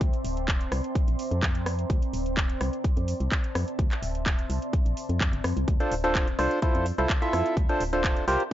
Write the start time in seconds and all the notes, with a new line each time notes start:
Already playing: C4 E5 A5
0.01 D2, kick, closed hi-hat
0.13 D5, closed hi-hat
0.23 D1 C6, open hi-hat
0.37 closed hi-hat
0.48 kick, clap, closed hi-hat
0.61 closed hi-hat
0.72 C2, cross-stick, open hi-hat
0.84 closed hi-hat
0.95 A#5, kick, closed hi-hat
1.01 C5
1.08 A#1, closed hi-hat
1.19 open hi-hat
1.31 F2, closed hi-hat
1.43 kick, clap, closed hi-hat
1.55 closed hi-hat
1.66 cross-stick, open hi-hat
1.79 closed hi-hat
1.90 D2, kick, closed hi-hat
2.02 closed hi-hat
2.11 D1 D5, open hi-hat
2.26 closed hi-hat
2.33 C6
2.37 kick, clap, closed hi-hat
2.50 closed hi-hat
2.61 C2, cross-stick, open hi-hat
2.73 closed hi-hat
2.84 kick, closed hi-hat
2.97 F2, closed hi-hat
3.06 A5, open hi-hat
3.15 E5
3.20 C2, closed hi-hat
3.32 kick, clap, closed hi-hat
3.44 closed hi-hat
3.55 F2, cross-stick, open hi-hat
3.68 closed hi-hat
3.79 D2, kick, closed hi-hat
3.91 clap, closed hi-hat
4.02 D1, open hi-hat
4.11 D5 C6, closed hi-hat
4.26 kick, clap, closed hi-hat
4.39 closed hi-hat
4.50 C2, open hi-hat
4.62 closed hi-hat
4.73 kick, closed hi-hat
4.86 A#1, closed hi-hat
4.97 open hi-hat
5.03 C5
5.09 F2, closed hi-hat
5.21 kick, clap, closed hi-hat
5.33 G1, closed hi-hat
5.44 F2, cross-stick, open hi-hat
5.57 C2, closed hi-hat
5.68 D2, kick, closed hi-hat
5.80 D4 F4 A4 C5, closed hi-hat
5.91 D1, open hi-hat
6.02 D4 F4 A4 C5 D5, closed hi-hat
6.11 C6
6.15 kick, clap, closed hi-hat
6.28 closed hi-hat
6.39 C2 D4 F4 A4 C5, cross-stick, open hi-hat
6.51 closed hi-hat
6.62 E4 F4 A4 C5, kick, closed hi-hat
6.75 F2, closed hi-hat
6.86 E5, open hi-hat
6.98 C2 E4 F4 A4 C5, closed hi-hat
7.05 A5
7.10 kick, clap, closed hi-hat
7.22 E4 F4 A4 E5, closed hi-hat
7.33 F2, cross-stick, open hi-hat
7.46 closed hi-hat
7.57 D2, kick, closed hi-hat
7.69 D4 F4 A4 C5, closed hi-hat
7.80 D1, open hi-hat
7.89 D4 F4 A4 C5 D5 C6, closed hi-hat
8.04 kick, clap, closed hi-hat
8.17 closed hi-hat
8.28 C2 F4 G4 A#4 C5, open hi-hat
8.40 closed hi-hat